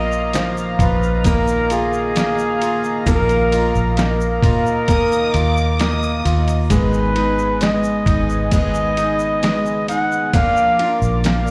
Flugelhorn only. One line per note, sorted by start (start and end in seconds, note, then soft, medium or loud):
0.00 0.49 D#5 loud
0.82 1.28 B4 medium
1.27 1.74 A#4 loud
1.72 3.08 G#4 loud
3.08 3.94 A#4 loud
3.99 6.21 A#4 medium
6.72 7.64 B4 medium
7.63 8.53 D#5 medium
8.54 9.85 D#5 loud
9.89 10.36 F#5 loud
10.34 10.98 F5 loud
11.25 11.51 F5 medium